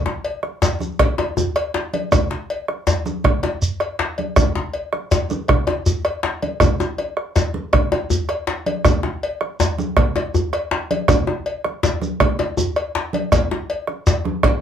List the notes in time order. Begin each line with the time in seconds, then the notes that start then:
0.06 djembe slap, djembe tone
0.25 cowbell
0.43 bombo rim, high conga
0.62 cowbell, djembe slap, djembe bass, shekere
0.80 bombo rim, djembe slap, high conga, shekere
0.99 bombo rim, bombo low, cowbell, low conga
1.18 cowbell, djembe slap, djembe tone
1.37 bombo rim, djembe bass, shekere
1.56 bombo rim, cowbell
1.74 djembe slap
1.93 cowbell, high conga
2.12 bombo rim, bombo low, cowbell, djembe slap, djembe bass, low conga, shekere
2.31 djembe slap
2.50 cowbell
2.68 bombo rim, high conga
2.87 cowbell, djembe slap, djembe bass, shekere
3.06 bombo rim, djembe slap, high conga, shekere
3.24 bombo rim, bombo low, cowbell, low conga
3.43 cowbell, djembe slap, djembe tone
3.62 bombo rim, shekere
3.80 bombo rim, cowbell
3.99 djembe slap
4.18 cowbell, high conga
4.36 bombo rim, bombo low, cowbell, djembe slap, djembe bass, low conga, shekere
4.55 djembe slap, djembe tone
4.74 cowbell
4.93 bombo rim, high conga
5.11 cowbell, djembe slap, djembe bass, shekere
5.30 bombo rim, djembe slap, high conga, shekere
5.48 bombo rim, bombo low, cowbell, low conga
5.67 cowbell, djembe slap, djembe tone
5.86 bombo rim, djembe bass, shekere
6.05 bombo rim, cowbell
6.23 djembe slap
6.42 cowbell, high conga
6.60 bombo rim, bombo low, cowbell, high conga, low conga, djembe bass, shekere
6.80 djembe slap, high conga, djembe tone, shekere
6.98 bombo rim, cowbell, djembe slap, high conga
7.17 bombo rim
7.36 cowbell, djembe slap, djembe bass, shekere
7.54 high conga
7.73 bombo rim, bombo low, cowbell, djembe slap, high conga, low conga
7.92 cowbell, djembe slap, djembe tone
8.10 djembe bass, shekere
8.29 bombo rim, cowbell
8.47 djembe slap
8.66 cowbell, high conga
8.85 bombo rim, bombo low, cowbell, djembe slap, djembe bass, low conga, shekere
9.03 djembe slap, djembe tone
9.23 cowbell
9.41 bombo rim, high conga
9.60 cowbell, djembe slap, djembe bass, shekere
9.78 bombo rim, djembe slap, high conga, shekere
9.97 bombo rim, bombo low, cowbell, low conga
10.16 cowbell, djembe slap, djembe tone
10.34 bombo rim, djembe bass, shekere
10.53 bombo rim, cowbell
10.71 djembe slap
10.91 cowbell, high conga
11.08 bombo rim, bombo low, cowbell, djembe slap, djembe bass, low conga, shekere
11.27 djembe slap, djembe tone
11.46 cowbell
11.64 bombo rim, high conga
11.83 cowbell, djembe slap, djembe bass, shekere
12.01 bombo rim, djembe slap, high conga, shekere
12.20 bombo rim, bombo low, cowbell, low conga
12.39 cowbell, djembe slap, djembe tone
12.57 bombo rim, djembe bass, shekere
12.76 bombo rim, cowbell
12.95 djembe slap
13.13 cowbell, high conga
13.32 bombo rim, bombo low, cowbell, djembe slap, djembe bass, low conga, shekere
13.51 djembe slap, djembe tone
13.70 cowbell
13.87 bombo rim, high conga
14.07 cowbell, djembe slap, djembe bass, shekere
14.25 bombo rim, djembe slap, high conga
14.43 bombo rim, bombo low, cowbell, low conga